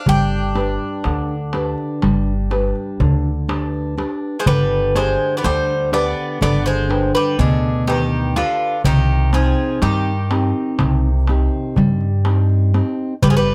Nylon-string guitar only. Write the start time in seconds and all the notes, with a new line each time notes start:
0.07 G3
0.55 D4 G4 B4
1.05 D3
1.53 D4 G4 B4
2.02 G3
2.50 D4 G4 B4
3.00 D3
3.48 D4 G4 B4
3.97 D4 G4 B4
4.46 D3
4.95 D4 G4 D5
5.44 D3
5.92 D4 G4 B4
6.41 D3
6.89 D4 B4 G5
7.39 B2
7.87 D4 G4 B4
8.36 D4 G4 B4
8.85 C3
9.33 C4 D#4 G5
9.82 G3
10.31 C4 D#4 G4
10.80 C3
11.29 C4 D#4 G4
11.78 G3
12.25 C4 D#4 G4
12.74 C4 D#4 G4
13.23 G3